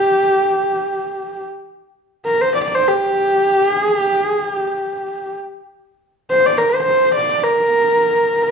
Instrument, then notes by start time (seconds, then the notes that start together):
horsehead fiddle
Already playing: G4
2.25 A#4
2.41 C5
2.55 D5
2.64 D5
2.75 C5
2.88 G4
3.75 G#4
3.98 G4
4.24 G#4
4.47 G4
6.30 C5
6.46 D5
6.58 A#4
6.70 C5
6.83 C5
7.16 D5
7.43 A#4
8.42 C5